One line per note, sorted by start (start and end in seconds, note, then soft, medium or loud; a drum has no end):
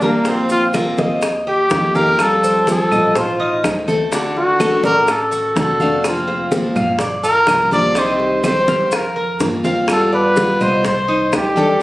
0.00 0.92 A#1 medium
0.00 0.26 G3 medium
0.00 0.31 A#3 medium
0.00 0.26 A#3 medium
0.00 0.26 D4 medium
0.00 0.25 G4 medium
0.00 0.25 A#4 medium
0.00 high bongo soft
0.00 high conga medium
0.00 maracas soft
0.25 0.72 F3 medium
0.25 0.73 A#3 medium
0.25 0.73 C4 medium
0.25 0.74 C4 medium
0.25 0.74 F4 medium
0.25 high bongo medium
0.25 high conga soft
0.25 maracas medium
0.29 0.51 C4 medium
0.50 0.65 F4 medium
0.50 high bongo soft
0.50 high conga soft
0.50 maracas medium
0.73 1.21 F3 medium
0.73 1.22 A#3 medium
0.73 1.22 C4 medium
0.73 1.22 F4 medium
0.73 0.98 A#4 medium
0.73 high bongo medium
0.73 high conga medium
0.73 claves medium
0.73 maracas medium
0.97 1.67 D#2 medium
0.97 1.45 D#5 medium
0.97 high bongo soft
0.97 high conga medium
0.97 maracas soft
1.22 muted steel-string acoustic guitar stroke medium
1.22 high bongo medium
1.22 high conga soft
1.22 claves medium
1.22 maracas medium
1.47 1.93 G4 medium
1.47 1.97 G4 medium
1.47 high conga soft
1.70 2.85 F2 loud
1.70 1.94 D#3 soft
1.70 1.94 A#3 medium
1.70 1.95 D#4 medium
1.70 1.94 G4 soft
1.70 high bongo medium
1.70 low bongo medium
1.70 high conga medium
1.70 maracas medium
1.95 2.19 A#3 medium
1.95 2.19 D#4 medium
1.95 2.18 G4 medium
1.95 2.23 A#4 loud
1.95 2.42 F5 medium
1.95 high bongo soft
1.95 high conga medium
1.95 maracas soft
2.18 2.66 F3 medium
2.18 2.66 G3 medium
2.18 2.66 C4 medium
2.18 2.66 F4 medium
2.18 2.68 A4 medium
2.18 high bongo medium
2.18 high conga soft
2.18 claves medium
2.18 maracas medium
2.44 2.90 C5 medium
2.44 high bongo soft
2.44 high conga soft
2.44 maracas medium
2.67 3.14 F3 medium
2.67 3.14 G3 medium
2.67 3.15 C4 medium
2.67 3.15 F4 medium
2.67 3.19 A4 medium
2.67 high bongo medium
2.67 high conga medium
2.67 maracas medium
2.91 3.60 A1 medium
2.91 3.15 D#5 medium
2.91 high bongo soft
2.91 high conga soft
2.91 low conga medium
2.91 claves medium
2.91 maracas soft
3.15 3.64 F4 medium
3.15 3.38 C5 medium
3.15 muted steel-string acoustic guitar stroke medium
3.15 high bongo medium
3.15 high conga soft
3.15 low conga medium
3.15 maracas medium
3.40 3.86 D#4 medium
3.40 high conga soft
3.64 4.77 D2 loud
3.64 3.87 D#3 soft
3.64 3.87 A3 medium
3.64 3.87 C4 medium
3.64 high bongo medium
3.64 low bongo medium
3.64 high conga soft
3.64 claves medium
3.64 maracas medium
3.88 4.11 A3 medium
3.88 4.11 C4 medium
3.88 4.11 A4 medium
3.88 high bongo soft
3.88 high conga medium
3.88 maracas soft
4.12 4.59 D3 medium
4.12 4.59 A3 medium
4.12 4.58 D4 medium
4.12 4.60 D4 medium
4.12 4.60 F#4 medium
4.12 high bongo medium
4.12 high conga soft
4.12 maracas medium
4.36 4.81 F#4 medium
4.36 high bongo soft
4.36 high conga soft
4.60 5.07 D3 medium
4.60 5.07 A3 medium
4.60 5.07 D4 medium
4.60 5.08 F#4 medium
4.60 4.83 A4 medium
4.60 high bongo medium
4.60 high conga medium
4.60 claves medium
4.60 maracas medium
4.83 5.52 A1 medium
4.83 5.13 A#4 loud
4.83 5.30 D5 medium
4.83 high bongo soft
4.83 high conga medium
4.83 maracas soft
5.08 5.57 A4 medium
5.08 muted steel-string acoustic guitar stroke medium
5.08 high bongo medium
5.08 high conga soft
5.08 claves medium
5.08 maracas medium
5.31 5.78 F#4 medium
5.31 high conga soft
5.31 maracas medium
5.56 6.69 F1 loud
5.56 5.79 D3 soft
5.56 5.79 A3 soft
5.56 5.80 D4 medium
5.56 5.80 F#4 soft
5.56 6.08 A4 medium
5.56 high bongo medium
5.56 low bongo medium
5.56 high conga medium
5.56 maracas medium
5.80 6.04 A3 medium
5.80 6.04 D4 medium
5.80 6.03 F#4 medium
5.80 6.27 F5 medium
5.80 high bongo soft
5.80 high conga medium
5.80 maracas soft
6.04 6.50 F3 medium
6.04 6.51 A#3 medium
6.04 6.51 C4 medium
6.04 6.52 F4 medium
6.04 6.53 F4 medium
6.04 high bongo medium
6.04 high conga soft
6.04 claves medium
6.04 maracas medium
6.27 6.74 C5 medium
6.27 high bongo soft
6.27 high conga soft
6.51 6.98 F3 medium
6.51 6.98 A#3 medium
6.51 6.99 C4 medium
6.51 6.99 F4 medium
6.51 high bongo medium
6.51 high conga medium
6.51 maracas medium
6.76 7.44 G1 medium
6.76 6.99 F5 medium
6.76 high bongo soft
6.76 high conga soft
6.76 low conga medium
6.76 claves medium
6.76 maracas soft
6.99 7.23 D5 medium
6.99 muted steel-string acoustic guitar stroke medium
6.99 high bongo medium
6.99 high conga soft
6.99 low conga medium
6.99 maracas medium
7.23 7.71 F4 medium
7.23 7.69 A#4 loud
7.23 high conga soft
7.23 maracas medium
7.47 8.62 C2 loud
7.47 7.71 F3 soft
7.47 7.71 A#3 soft
7.47 7.71 D4 medium
7.47 7.70 G4 medium
7.47 high bongo medium
7.47 low bongo medium
7.47 high conga soft
7.47 claves medium
7.47 maracas medium
7.71 7.96 F3 medium
7.71 7.96 A#3 medium
7.71 7.96 D4 medium
7.71 7.95 G4 medium
7.71 7.95 C5 medium
7.71 8.00 D5 loud
7.71 high bongo soft
7.71 high conga medium
7.71 maracas soft
7.95 8.42 C3 medium
7.95 8.43 D#3 medium
7.95 8.43 G3 medium
7.95 8.44 C4 medium
7.95 8.43 D#4 medium
7.95 8.44 G4 medium
7.95 8.46 C5 medium
7.95 high bongo medium
7.95 high conga soft
7.95 maracas medium
8.20 high bongo soft
8.20 high conga soft
8.43 8.91 C3 medium
8.43 8.92 D#3 medium
8.43 8.92 G3 medium
8.43 8.92 C4 medium
8.43 8.92 G4 medium
8.43 8.68 C5 medium
8.43 8.97 C5 medium
8.43 high bongo medium
8.43 high conga medium
8.43 claves medium
8.43 maracas medium
8.68 9.37 F2 medium
8.68 9.15 F5 medium
8.68 high bongo soft
8.68 high conga loud
8.68 maracas soft
8.92 9.42 A#4 medium
8.92 muted steel-string acoustic guitar stroke medium
8.92 high bongo medium
8.92 high conga soft
8.92 claves medium
8.92 maracas medium
9.16 9.63 A#4 medium
9.16 high conga soft
9.40 10.54 G2 medium
9.40 9.64 F3 soft
9.40 9.64 A#3 soft
9.40 9.64 C4 medium
9.40 9.63 F4 medium
9.40 high bongo medium
9.40 low bongo medium
9.40 high conga medium
9.40 maracas medium
9.64 9.88 A#3 medium
9.64 9.88 C4 medium
9.64 9.88 F4 medium
9.64 10.11 F5 medium
9.64 high bongo soft
9.64 high conga medium
9.64 maracas soft
9.88 10.35 G3 medium
9.88 10.36 B3 medium
9.88 10.36 F4 medium
9.88 10.13 A4 medium
9.88 high bongo medium
9.88 high conga soft
9.88 claves medium
9.88 maracas medium
10.12 10.63 B4 medium
10.12 10.59 D5 medium
10.12 high bongo soft
10.12 high conga soft
10.36 10.84 G3 medium
10.36 10.84 B3 medium
10.36 10.85 F4 medium
10.36 high bongo medium
10.36 high conga loud
10.36 maracas medium
10.61 11.29 C2 loud
10.61 10.86 C5 loud
10.61 10.84 D#5 medium
10.61 high bongo soft
10.61 high conga soft
10.61 low conga medium
10.61 claves medium
10.61 maracas soft
10.84 11.08 C5 medium
10.84 11.37 C5 medium
10.84 muted steel-string acoustic guitar stroke medium
10.84 high bongo medium
10.84 high conga soft
10.84 low conga medium
10.84 maracas medium
11.08 11.55 D#4 medium
11.08 high conga soft
11.32 11.82 D2 loud
11.32 11.56 D#3 soft
11.32 11.56 G3 soft
11.32 11.55 D4 medium
11.32 11.55 G4 medium
11.32 11.82 G4 medium
11.32 high bongo medium
11.32 low bongo medium
11.32 high conga soft
11.32 claves medium
11.32 maracas medium
11.56 11.79 D#3 medium
11.56 11.80 G3 medium
11.56 11.79 D4 medium
11.56 11.80 G4 medium
11.56 11.81 A4 medium
11.56 high bongo soft
11.56 high conga medium
11.56 maracas soft